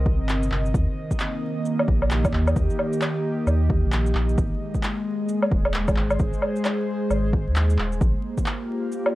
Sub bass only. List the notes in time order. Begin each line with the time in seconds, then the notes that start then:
Already playing: C2
0.20 G1
0.52 G1
0.74 D#2
1.88 A#1
2.33 D#2
2.56 D#2
3.47 D#2
3.84 A#1
4.15 A#1
4.38 G#1
5.52 D#1
5.97 G#1
6.20 G#1
7.10 G#1
7.47 D#2
7.78 D#1
8.01 A#1